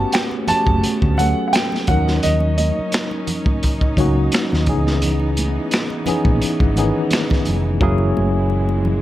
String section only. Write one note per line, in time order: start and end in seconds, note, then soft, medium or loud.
0.00 1.85 C#3 medium
0.00 1.85 A3 medium
0.00 1.85 B3 medium
1.88 4.64 C#4 medium
1.88 7.77 D#4 medium
4.67 9.02 E3 medium
4.67 7.78 B3 medium
7.81 9.02 A#2 medium
7.81 9.02 G#3 medium